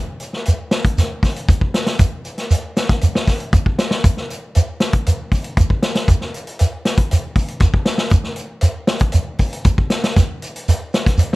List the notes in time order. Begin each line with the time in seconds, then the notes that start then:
0.20 closed hi-hat, shekere
0.33 snare
0.45 closed hi-hat, shekere
0.71 snare, closed hi-hat, shekere
0.85 kick, closed hi-hat
0.98 snare, closed hi-hat, shekere
1.23 kick, snare, open hi-hat, shekere
1.36 closed hi-hat
1.49 kick, closed hi-hat, shekere
1.61 kick
1.74 snare, closed hi-hat, shekere
1.87 snare, closed hi-hat
1.99 kick, closed hi-hat, shekere
2.25 closed hi-hat, shekere
2.38 snare, closed hi-hat
2.51 closed hi-hat, shekere
2.77 snare, closed hi-hat, shekere
2.89 kick, snare, closed hi-hat
3.01 closed hi-hat, shekere
3.15 snare
3.27 kick, snare, open hi-hat, shekere
3.40 closed hi-hat
3.53 kick, closed hi-hat, shekere
3.66 kick
3.79 snare, closed hi-hat, shekere
3.91 snare
4.04 kick, closed hi-hat, shekere
4.17 snare
4.30 closed hi-hat, shekere
4.55 closed hi-hat, shekere
4.80 snare, closed hi-hat, shekere
4.93 kick, closed hi-hat
5.06 closed hi-hat, shekere
5.32 kick, open hi-hat, shekere
5.44 closed hi-hat
5.57 kick, closed hi-hat, shekere
5.70 kick
5.82 snare, closed hi-hat, shekere
5.95 snare, closed hi-hat
6.08 kick, closed hi-hat, shekere
6.21 snare
6.34 closed hi-hat, shekere
6.47 closed hi-hat
6.59 closed hi-hat, shekere
6.85 snare, closed hi-hat, shekere
6.98 kick, closed hi-hat
7.11 closed hi-hat, shekere
7.35 kick, open hi-hat, shekere
7.48 closed hi-hat
7.60 kick, snare, closed hi-hat, shekere
7.74 kick
7.85 snare, closed hi-hat, shekere
7.98 snare
8.10 kick, closed hi-hat, shekere
8.24 snare
8.36 closed hi-hat, shekere
8.61 closed hi-hat, shekere
8.87 snare, closed hi-hat, shekere
8.99 kick, closed hi-hat
9.12 closed hi-hat, shekere
9.38 kick, open hi-hat, shekere
9.53 closed hi-hat
9.64 kick, closed hi-hat, shekere
9.78 kick
9.90 snare, closed hi-hat, shekere
10.04 snare, closed hi-hat
10.16 kick, snare, closed hi-hat, shekere
10.42 closed hi-hat, shekere
10.56 closed hi-hat
10.68 closed hi-hat, shekere
10.94 snare, closed hi-hat, shekere
11.06 kick, snare, closed hi-hat
11.18 closed hi-hat, shekere